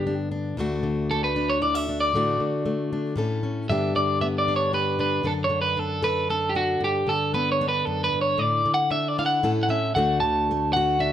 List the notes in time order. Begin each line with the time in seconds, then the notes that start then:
Already playing: G2 D3 B3 G4
0.07 D4
0.31 D4
0.57 D2 D3 A3 D4 F#4
0.83 D3
1.11 A3 A4
1.24 B4
1.36 D4
1.50 C#5
1.62 E4 D5
1.75 F#4 E5
1.89 D4
2.00 D5
2.14 A2 D3 A3 D4 F#4
2.40 D3
2.66 A3
2.93 D4
3.16 A2 C#4 E4 A4
3.43 C#4
3.69 G2 D3 B3 D4 G4 E5
3.96 D3 D5
4.21 B3 E5
4.38 D5
4.48 D4
4.56 C#5
4.73 G4 B4
4.99 D4 B4
5.23 F#2 D3 D4 A4
5.44 C#5
5.50 D3
5.62 B4
5.77 D4 A4
6.02 A4 B4
6.30 D4 A4
6.49 G4
6.55 D4 F#4
6.80 G2 G4
7.07 D3 A4
7.34 B3 B4
7.52 C#5
7.61 D4
7.68 B4
7.85 F#2 A4
8.04 B4
8.12 G2
8.21 C#5
8.38 A2 D5
8.65 D3
8.74 F#5
8.91 D4 E5
9.08 D5
9.19 E4 F5
9.26 F#5
9.43 A2 C#4 E4 A4
9.63 F#5
9.69 C#4 E5
9.95 D2 D3 A3 D4 F#4 F#5
10.20 D3 A5
10.51 A3
10.73 F#4 F#5
11.00 D4 E5